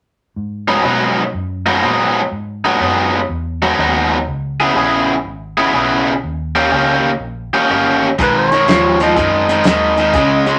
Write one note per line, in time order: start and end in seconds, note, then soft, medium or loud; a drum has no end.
0.36 0.83 G#2 medium
0.68 0.82 G#2 medium
0.68 0.83 F#3 medium
0.68 0.83 B3 medium
0.68 0.84 D#4 medium
0.84 1.22 G#2 medium
0.84 1.32 B2 medium
0.84 1.22 F#3 medium
0.84 1.22 B3 medium
0.84 1.22 D#4 medium
1.34 1.81 F#2 medium
1.66 1.81 G#2 medium
1.66 1.81 F#3 medium
1.66 1.82 B3 medium
1.66 1.82 D#4 medium
1.82 2.20 G#2 medium
1.82 2.31 A#2 medium
1.82 2.20 F#3 medium
1.82 2.20 B3 medium
1.82 2.20 D#4 medium
2.32 2.79 G#2 medium
2.64 2.80 G#2 medium
2.64 2.80 F#3 medium
2.64 2.81 B3 medium
2.64 2.80 D#4 medium
2.80 3.28 F#2 medium
2.80 3.18 G#2 medium
2.80 3.19 F#3 medium
2.80 3.19 B3 medium
2.80 3.19 D#4 medium
3.29 3.77 E2 medium
3.62 3.78 G#2 medium
3.62 3.78 F#3 medium
3.62 3.78 B3 medium
3.62 3.78 D#4 medium
3.78 4.25 D#2 medium
3.78 4.16 G#2 medium
3.78 4.16 F#3 medium
3.78 4.17 B3 medium
3.78 4.17 D#4 medium
4.27 4.75 C#2 medium
4.60 4.74 C#3 medium
4.60 4.74 B3 medium
4.60 4.74 E4 medium
4.60 4.75 G#4 medium
4.75 5.23 A#1 medium
4.75 5.13 C#3 medium
4.75 5.13 B3 medium
4.75 5.14 E4 medium
4.75 5.14 G#4 medium
5.25 5.72 G#1 medium
5.57 5.73 C#3 medium
5.57 5.73 B3 medium
5.57 5.73 E4 medium
5.57 5.74 G#4 medium
5.74 6.21 B1 medium
5.74 6.12 C#3 medium
5.74 6.12 B3 medium
5.74 6.12 E4 medium
5.74 6.12 G#4 medium
6.23 6.71 D#2 medium
6.55 6.70 D#3 medium
6.55 6.71 A#3 medium
6.55 6.71 C#4 medium
6.55 6.72 G4 medium
6.72 7.19 C#2 medium
6.72 7.09 D#3 medium
6.72 7.10 A#3 medium
6.72 7.10 C#4 medium
6.72 7.10 G4 medium
7.20 7.51 A#1 medium
7.54 7.69 D#3 medium
7.54 7.69 A#3 medium
7.54 7.70 C#4 medium
7.54 7.70 G4 medium
7.54 muted fingered electric bass stroke soft
7.70 8.17 G1 medium
7.70 8.07 D#3 medium
7.70 8.08 A#3 medium
7.70 8.08 C#4 medium
7.70 8.08 G4 medium
8.19 8.66 B1 medium
8.19 8.48 G#2 medium
8.19 8.49 D#3 medium
8.19 8.36 B4 medium
8.19 kick loud
8.19 closed hi-hat medium
8.38 9.00 C#5 medium
8.52 8.66 G#2 medium
8.52 8.66 D#3 medium
8.52 closed hi-hat medium
8.67 9.14 D#2 medium
8.67 8.97 G#2 medium
8.67 8.97 F3 medium
8.67 snare loud
8.67 closed hi-hat medium
9.00 9.15 G#2 medium
9.00 9.15 F3 medium
9.00 9.64 D#5 medium
9.00 snare soft
9.00 closed hi-hat medium
9.16 9.64 F#2 medium
9.16 9.46 G#2 medium
9.16 9.46 D#3 medium
9.16 kick medium
9.16 closed hi-hat medium
9.48 9.63 G#2 medium
9.48 9.64 D#3 medium
9.48 closed hi-hat medium
9.64 10.13 D#2 medium
9.64 9.95 G#2 medium
9.64 9.95 D#3 medium
9.64 10.59 D#5 medium
9.64 snare loud
9.64 closed hi-hat medium
9.97 10.12 G#2 medium
9.97 10.12 D#3 medium
9.97 closed hi-hat medium
10.13 10.59 C#2 medium
10.13 10.44 C#3 medium
10.13 10.44 G#3 medium
10.13 kick loud
10.13 closed hi-hat medium
10.46 10.59 C#3 medium
10.46 10.59 G#3 medium
10.46 closed hi-hat medium